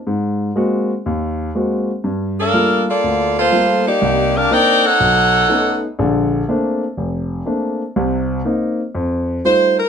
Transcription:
X:1
M:4/4
L:1/8
Q:"Swing" 1/4=122
K:Bb
V:1 name="Saxophone section"
z8 | z [DABf]2 [B,FAd]2 [B,FAc]2 [B,EGd]- | [B,EGd] [DGBf] [EBdg] [EA_d_g]4 z | z8 |
z6 c B |]
V:2 name="Grand piano"
_A,,2 [_A,B,C_G] z E,,2 [A,B,CG] z | G,,2 [G,A,B,F] z D,,2 [G,A,B,F] z | C,,2 [B,CDE] z =B,,,2 [A,=B,^C^D] z | [B,,,D,]2 [A,B,CD] z F,,,2 [A,B,CD] z |
[C,,C,]2 [B,CE] z F,,2 [G,A,EF] z |]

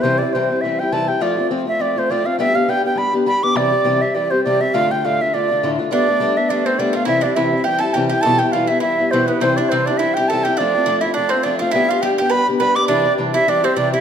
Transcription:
X:1
M:4/4
L:1/8
Q:"Swing" 1/4=205
K:C
V:1 name="Flute"
c d c2 e g a g | d3 e d c d f | e f g g b z b d' | d3 e d c d e |
f g f e d3 z | d3 e d c d f | e d e2 g a g g | a g f e e2 c B |
c d c d e g a g | d3 e d c d f | e f g g b z b d' | d3 e d c d e |]
V:2 name="Mandolin"
z8 | z8 | z8 | z8 |
z8 | D4 D C D F | E D E2 G A G G | A G F E E2 C B, |
C D C D E G A G | D2 D E D C D F | E F G G B z B d | D3 E D C D E |]
V:3 name="Steel-string acoustic guitar"
[C,E,G,CE] [G,CE] [C,E,G,CE] [G,CE] [E,G,CE] [G,CE] [C,E,G,CE] [G,CE] | [F,A,CF] [A,CF] [F,A,CF] [A,CF] [F,A,CF] [A,CF] [F,A,CF] [A,CF] | [G,B,DG] [B,DG] [G,B,DG] [B,DG] [G,B,DG] [B,DG] [G,B,DG] [B,DG] | [C,E,G,CG] [G,CG] [C,E,G,CG] [G,CG] [E,G,CG] [G,CG] [C,E,G,CG] [G,CG] |
[D,,A,,D,A,DF] [D,A,DF] [D,,A,,D,A,DF] [D,A,DF] [D,A,DF] [D,A,DF] [D,,A,,D,A,DF] [D,A,DF] | [G,A,B,D] [A,B,D] [G,A,B,D] [A,B,D] [G,A,B,D] [A,B,D] [G,A,B,D] [A,B,D] | [C,E,G,CE] [G,CE] [C,E,G,CE] [G,CE] [E,G,CE] [G,CE] [C,E,G,CE] [G,CE] | [B,,E,G,B,E] [G,B,E] [B,,E,G,B,E] [G,B,E] [E,G,B,E] [G,B,E] [B,,E,G,B,E] [G,B,E] |
[C,E,G,CE] [G,CE] [C,E,G,CE] [G,CE] [E,G,CE] [G,CE] [C,E,G,CE] [G,CE] | [F,A,CF] [A,CF] [F,A,CF] [A,CF] [F,A,CF] [A,CF] [F,A,CF] [A,CF] | [G,B,DG] [B,DG] [G,B,DG] [B,DG] [G,B,DG] [B,DG] [G,B,DG] [B,DG] | [C,E,G,CG] [CG] [C,E,G,CG] [G,CG] [E,G,CG] [G,CG] [C,E,G,CG] [G,CG] |]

